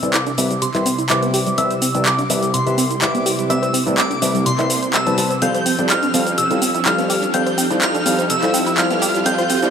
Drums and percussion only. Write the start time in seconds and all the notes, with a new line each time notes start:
0.03 closed hi-hat, shaker
0.14 clap, closed hi-hat, shaker
0.27 closed hi-hat, shaker
0.38 open hi-hat, shaker
0.51 closed hi-hat, shaker
0.62 closed hi-hat, shaker
0.74 clap, closed hi-hat, shaker
0.86 open hi-hat, shaker
0.98 closed hi-hat, shaker
1.09 clap, closed hi-hat, shaker
1.23 closed hi-hat, shaker
1.34 open hi-hat, shaker
1.47 closed hi-hat, shaker
1.58 closed hi-hat, shaker
1.71 closed hi-hat, shaker
1.82 open hi-hat, shaker
1.95 closed hi-hat, shaker
2.06 clap, closed hi-hat, shaker
2.19 closed hi-hat, shaker
2.30 open hi-hat, shaker
2.43 closed hi-hat, shaker
2.54 closed hi-hat, shaker
2.67 closed hi-hat, shaker
2.78 open hi-hat, shaker
2.91 closed hi-hat, shaker
3.02 clap, closed hi-hat, shaker
3.15 closed hi-hat, shaker
3.26 open hi-hat, shaker
3.39 closed hi-hat, shaker
3.50 closed hi-hat, shaker
3.63 closed hi-hat, shaker
3.74 open hi-hat, shaker
3.87 closed hi-hat, shaker
3.98 clap, closed hi-hat, shaker
4.11 closed hi-hat, shaker
4.22 open hi-hat, shaker
4.35 closed hi-hat, shaker
4.46 closed hi-hat, shaker
4.58 clap, closed hi-hat, shaker
4.70 open hi-hat, shaker
4.83 closed hi-hat, shaker
4.94 clap, closed hi-hat, shaker
5.07 closed hi-hat, shaker
5.18 open hi-hat, shaker
5.31 closed hi-hat, shaker
5.42 closed hi-hat, shaker
5.55 closed hi-hat, shaker
5.66 open hi-hat, shaker
5.79 closed hi-hat, shaker
5.90 clap, closed hi-hat, shaker
6.03 closed hi-hat, shaker
6.14 open hi-hat, shaker
6.27 closed hi-hat, shaker
6.38 closed hi-hat, shaker
6.51 closed hi-hat, shaker
6.62 open hi-hat, shaker
6.74 closed hi-hat, shaker
6.86 clap, closed hi-hat, shaker
6.98 closed hi-hat, shaker
7.10 open hi-hat, shaker
7.23 closed hi-hat, shaker
7.34 closed hi-hat, shaker
7.47 closed hi-hat, shaker
7.58 open hi-hat, shaker
7.71 closed hi-hat, shaker
7.81 clap, closed hi-hat, shaker
7.95 closed hi-hat, shaker
8.06 open hi-hat, shaker
8.19 closed hi-hat, shaker
8.30 closed hi-hat, shaker
8.42 clap, closed hi-hat, shaker
8.54 open hi-hat, shaker
8.67 closed hi-hat, shaker
8.78 clap, closed hi-hat, shaker
8.91 closed hi-hat, shaker
9.02 open hi-hat, shaker
9.15 closed hi-hat, shaker
9.26 closed hi-hat, shaker
9.38 closed hi-hat, shaker
9.50 open hi-hat, shaker
9.62 closed hi-hat, shaker